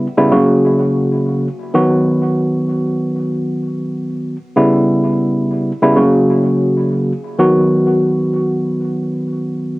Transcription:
0, 0, Header, 1, 2, 480
1, 0, Start_track
1, 0, Key_signature, 5, "major"
1, 0, Tempo, 705882
1, 1180, Time_signature, 4, 2, 24, 8
1, 6660, End_track
2, 0, Start_track
2, 0, Title_t, "Tine electric piano"
2, 0, Program_c, 0, 4
2, 118, Note_on_c, 0, 49, 95
2, 119, Note_on_c, 0, 55, 87
2, 121, Note_on_c, 0, 59, 85
2, 123, Note_on_c, 0, 64, 106
2, 205, Note_off_c, 0, 49, 0
2, 213, Note_on_c, 0, 49, 101
2, 215, Note_on_c, 0, 54, 85
2, 217, Note_on_c, 0, 58, 85
2, 218, Note_on_c, 0, 66, 99
2, 238, Note_off_c, 0, 55, 0
2, 239, Note_off_c, 0, 59, 0
2, 240, Note_off_c, 0, 64, 0
2, 998, Note_off_c, 0, 49, 0
2, 999, Note_off_c, 0, 54, 0
2, 1001, Note_off_c, 0, 58, 0
2, 1001, Note_off_c, 0, 66, 0
2, 1182, Note_on_c, 0, 51, 98
2, 1185, Note_on_c, 0, 54, 82
2, 1186, Note_on_c, 0, 59, 87
2, 1188, Note_on_c, 0, 66, 105
2, 2962, Note_off_c, 0, 51, 0
2, 2964, Note_off_c, 0, 54, 0
2, 2964, Note_off_c, 0, 59, 0
2, 2965, Note_off_c, 0, 66, 0
2, 3101, Note_on_c, 0, 49, 90
2, 3104, Note_on_c, 0, 55, 81
2, 3105, Note_on_c, 0, 59, 84
2, 3107, Note_on_c, 0, 64, 97
2, 3883, Note_off_c, 0, 49, 0
2, 3884, Note_off_c, 0, 55, 0
2, 3885, Note_off_c, 0, 59, 0
2, 3885, Note_off_c, 0, 64, 0
2, 3958, Note_on_c, 0, 49, 99
2, 3960, Note_on_c, 0, 55, 86
2, 3962, Note_on_c, 0, 59, 85
2, 3964, Note_on_c, 0, 64, 109
2, 4045, Note_off_c, 0, 49, 0
2, 4053, Note_on_c, 0, 49, 97
2, 4055, Note_on_c, 0, 54, 88
2, 4056, Note_on_c, 0, 58, 85
2, 4058, Note_on_c, 0, 66, 95
2, 4079, Note_off_c, 0, 55, 0
2, 4080, Note_off_c, 0, 59, 0
2, 4081, Note_off_c, 0, 64, 0
2, 4838, Note_off_c, 0, 49, 0
2, 4839, Note_off_c, 0, 54, 0
2, 4840, Note_off_c, 0, 58, 0
2, 4841, Note_off_c, 0, 66, 0
2, 5023, Note_on_c, 0, 51, 95
2, 5025, Note_on_c, 0, 54, 80
2, 5026, Note_on_c, 0, 59, 84
2, 5028, Note_on_c, 0, 66, 109
2, 6660, Note_off_c, 0, 51, 0
2, 6660, Note_off_c, 0, 54, 0
2, 6660, Note_off_c, 0, 59, 0
2, 6660, Note_off_c, 0, 66, 0
2, 6660, End_track
0, 0, End_of_file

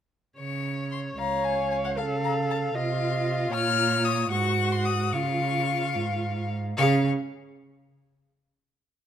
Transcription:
0, 0, Header, 1, 5, 480
1, 0, Start_track
1, 0, Key_signature, -5, "major"
1, 0, Tempo, 524476
1, 361, Time_signature, 6, 3, 24, 8
1, 4195, Tempo, 546448
1, 6115, Tempo, 532860
1, 8178, End_track
2, 0, Start_track
2, 0, Title_t, "Violin"
2, 0, Program_c, 0, 40
2, 365, Note_on_c, 0, 85, 48
2, 815, Note_off_c, 0, 85, 0
2, 837, Note_on_c, 0, 84, 53
2, 910, Note_off_c, 0, 84, 0
2, 1088, Note_on_c, 0, 82, 61
2, 1322, Note_on_c, 0, 80, 60
2, 1335, Note_off_c, 0, 82, 0
2, 1557, Note_off_c, 0, 80, 0
2, 1562, Note_on_c, 0, 80, 54
2, 1611, Note_off_c, 0, 80, 0
2, 1689, Note_on_c, 0, 78, 59
2, 1736, Note_off_c, 0, 78, 0
2, 1804, Note_on_c, 0, 77, 56
2, 1877, Note_off_c, 0, 77, 0
2, 2052, Note_on_c, 0, 82, 68
2, 2125, Note_off_c, 0, 82, 0
2, 2292, Note_on_c, 0, 81, 54
2, 2365, Note_off_c, 0, 81, 0
2, 2533, Note_on_c, 0, 77, 76
2, 3233, Note_on_c, 0, 89, 102
2, 3247, Note_off_c, 0, 77, 0
2, 3702, Note_on_c, 0, 87, 84
2, 3716, Note_off_c, 0, 89, 0
2, 3941, Note_off_c, 0, 87, 0
2, 3946, Note_on_c, 0, 85, 89
2, 4316, Note_on_c, 0, 84, 70
2, 4330, Note_off_c, 0, 85, 0
2, 4429, Note_on_c, 0, 87, 74
2, 4443, Note_off_c, 0, 84, 0
2, 4674, Note_on_c, 0, 85, 69
2, 4687, Note_off_c, 0, 87, 0
2, 5877, Note_off_c, 0, 85, 0
2, 6126, Note_on_c, 0, 85, 80
2, 6389, Note_off_c, 0, 85, 0
2, 8178, End_track
3, 0, Start_track
3, 0, Title_t, "Violin"
3, 0, Program_c, 1, 40
3, 351, Note_on_c, 1, 73, 38
3, 1077, Note_on_c, 1, 77, 42
3, 1091, Note_off_c, 1, 73, 0
3, 1792, Note_off_c, 1, 77, 0
3, 1797, Note_on_c, 1, 77, 53
3, 2511, Note_on_c, 1, 75, 53
3, 2524, Note_off_c, 1, 77, 0
3, 3215, Note_off_c, 1, 75, 0
3, 3221, Note_on_c, 1, 73, 64
3, 3932, Note_off_c, 1, 73, 0
3, 3944, Note_on_c, 1, 78, 53
3, 4674, Note_on_c, 1, 77, 56
3, 4687, Note_off_c, 1, 78, 0
3, 5935, Note_off_c, 1, 77, 0
3, 6115, Note_on_c, 1, 77, 83
3, 6383, Note_off_c, 1, 77, 0
3, 8178, End_track
4, 0, Start_track
4, 0, Title_t, "Viola"
4, 0, Program_c, 2, 41
4, 1080, Note_on_c, 2, 73, 48
4, 1809, Note_on_c, 2, 69, 58
4, 1823, Note_off_c, 2, 73, 0
4, 2512, Note_on_c, 2, 65, 63
4, 2526, Note_off_c, 2, 69, 0
4, 3947, Note_off_c, 2, 65, 0
4, 3955, Note_on_c, 2, 66, 66
4, 4687, Note_on_c, 2, 65, 51
4, 4700, Note_off_c, 2, 66, 0
4, 5763, Note_off_c, 2, 65, 0
4, 6127, Note_on_c, 2, 68, 67
4, 6390, Note_off_c, 2, 68, 0
4, 8178, End_track
5, 0, Start_track
5, 0, Title_t, "Cello"
5, 0, Program_c, 3, 42
5, 350, Note_on_c, 3, 49, 39
5, 1046, Note_off_c, 3, 49, 0
5, 1075, Note_on_c, 3, 37, 42
5, 1800, Note_on_c, 3, 49, 50
5, 1814, Note_off_c, 3, 37, 0
5, 2511, Note_off_c, 3, 49, 0
5, 2516, Note_on_c, 3, 48, 52
5, 3212, Note_off_c, 3, 48, 0
5, 3224, Note_on_c, 3, 46, 66
5, 3934, Note_off_c, 3, 46, 0
5, 3945, Note_on_c, 3, 44, 58
5, 4670, Note_on_c, 3, 49, 56
5, 4684, Note_off_c, 3, 44, 0
5, 5396, Note_on_c, 3, 44, 47
5, 5409, Note_off_c, 3, 49, 0
5, 6114, Note_off_c, 3, 44, 0
5, 6119, Note_on_c, 3, 49, 87
5, 6385, Note_off_c, 3, 49, 0
5, 8178, End_track
0, 0, End_of_file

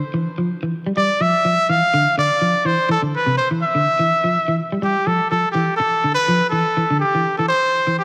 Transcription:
0, 0, Header, 1, 4, 480
1, 0, Start_track
1, 0, Tempo, 484262
1, 946, Time_signature, 4, 2, 24, 8
1, 7970, End_track
2, 0, Start_track
2, 0, Title_t, "Trumpet"
2, 0, Program_c, 0, 56
2, 963, Note_on_c, 0, 74, 94
2, 1204, Note_on_c, 0, 76, 94
2, 1219, Note_off_c, 0, 74, 0
2, 1686, Note_on_c, 0, 77, 97
2, 1701, Note_off_c, 0, 76, 0
2, 2154, Note_off_c, 0, 77, 0
2, 2168, Note_on_c, 0, 74, 95
2, 2638, Note_on_c, 0, 72, 85
2, 2652, Note_off_c, 0, 74, 0
2, 2869, Note_off_c, 0, 72, 0
2, 2888, Note_on_c, 0, 69, 86
2, 2990, Note_off_c, 0, 69, 0
2, 3135, Note_on_c, 0, 71, 81
2, 3342, Note_off_c, 0, 71, 0
2, 3350, Note_on_c, 0, 72, 82
2, 3456, Note_off_c, 0, 72, 0
2, 3600, Note_on_c, 0, 76, 95
2, 4510, Note_off_c, 0, 76, 0
2, 4798, Note_on_c, 0, 67, 88
2, 5026, Note_on_c, 0, 69, 80
2, 5041, Note_off_c, 0, 67, 0
2, 5255, Note_off_c, 0, 69, 0
2, 5261, Note_on_c, 0, 69, 86
2, 5467, Note_off_c, 0, 69, 0
2, 5473, Note_on_c, 0, 67, 79
2, 5709, Note_off_c, 0, 67, 0
2, 5719, Note_on_c, 0, 69, 90
2, 6076, Note_off_c, 0, 69, 0
2, 6095, Note_on_c, 0, 71, 99
2, 6428, Note_off_c, 0, 71, 0
2, 6442, Note_on_c, 0, 69, 92
2, 6899, Note_off_c, 0, 69, 0
2, 6937, Note_on_c, 0, 67, 85
2, 7287, Note_off_c, 0, 67, 0
2, 7314, Note_on_c, 0, 69, 80
2, 7416, Note_off_c, 0, 69, 0
2, 7421, Note_on_c, 0, 72, 99
2, 7870, Note_off_c, 0, 72, 0
2, 7918, Note_on_c, 0, 67, 80
2, 7970, Note_off_c, 0, 67, 0
2, 7970, End_track
3, 0, Start_track
3, 0, Title_t, "Clean electric guitar"
3, 0, Program_c, 1, 27
3, 137, Note_on_c, 1, 52, 73
3, 257, Note_off_c, 1, 52, 0
3, 378, Note_on_c, 1, 53, 63
3, 497, Note_off_c, 1, 53, 0
3, 623, Note_on_c, 1, 52, 65
3, 741, Note_off_c, 1, 52, 0
3, 857, Note_on_c, 1, 55, 67
3, 908, Note_off_c, 1, 55, 0
3, 961, Note_on_c, 1, 55, 80
3, 1081, Note_off_c, 1, 55, 0
3, 1195, Note_on_c, 1, 53, 74
3, 1317, Note_off_c, 1, 53, 0
3, 1437, Note_on_c, 1, 53, 73
3, 1558, Note_off_c, 1, 53, 0
3, 1679, Note_on_c, 1, 52, 76
3, 1800, Note_off_c, 1, 52, 0
3, 1920, Note_on_c, 1, 50, 84
3, 2040, Note_off_c, 1, 50, 0
3, 2157, Note_on_c, 1, 50, 70
3, 2278, Note_off_c, 1, 50, 0
3, 2395, Note_on_c, 1, 53, 80
3, 2516, Note_off_c, 1, 53, 0
3, 2628, Note_on_c, 1, 52, 70
3, 2751, Note_off_c, 1, 52, 0
3, 2866, Note_on_c, 1, 52, 83
3, 2933, Note_off_c, 1, 52, 0
3, 2998, Note_on_c, 1, 50, 66
3, 3121, Note_off_c, 1, 50, 0
3, 3235, Note_on_c, 1, 48, 69
3, 3359, Note_off_c, 1, 48, 0
3, 3479, Note_on_c, 1, 52, 65
3, 3602, Note_off_c, 1, 52, 0
3, 3717, Note_on_c, 1, 50, 67
3, 3840, Note_off_c, 1, 50, 0
3, 3958, Note_on_c, 1, 52, 72
3, 4081, Note_off_c, 1, 52, 0
3, 4203, Note_on_c, 1, 53, 66
3, 4325, Note_off_c, 1, 53, 0
3, 4442, Note_on_c, 1, 52, 68
3, 4564, Note_off_c, 1, 52, 0
3, 4682, Note_on_c, 1, 55, 69
3, 4736, Note_off_c, 1, 55, 0
3, 4780, Note_on_c, 1, 55, 87
3, 4905, Note_off_c, 1, 55, 0
3, 5024, Note_on_c, 1, 53, 72
3, 5148, Note_off_c, 1, 53, 0
3, 5270, Note_on_c, 1, 53, 68
3, 5392, Note_off_c, 1, 53, 0
3, 5500, Note_on_c, 1, 52, 79
3, 5625, Note_off_c, 1, 52, 0
3, 5989, Note_on_c, 1, 50, 72
3, 6112, Note_off_c, 1, 50, 0
3, 6227, Note_on_c, 1, 53, 76
3, 6351, Note_off_c, 1, 53, 0
3, 6466, Note_on_c, 1, 52, 74
3, 6590, Note_off_c, 1, 52, 0
3, 6711, Note_on_c, 1, 52, 80
3, 6777, Note_off_c, 1, 52, 0
3, 6844, Note_on_c, 1, 50, 69
3, 6967, Note_off_c, 1, 50, 0
3, 7084, Note_on_c, 1, 52, 65
3, 7207, Note_off_c, 1, 52, 0
3, 7325, Note_on_c, 1, 52, 69
3, 7448, Note_off_c, 1, 52, 0
3, 7801, Note_on_c, 1, 52, 62
3, 7925, Note_off_c, 1, 52, 0
3, 7970, End_track
4, 0, Start_track
4, 0, Title_t, "Muted clean electric guitar strokes"
4, 5748, Note_on_c, 9, 29, 90
4, 5847, Note_off_c, 9, 29, 0
4, 7970, End_track
0, 0, End_of_file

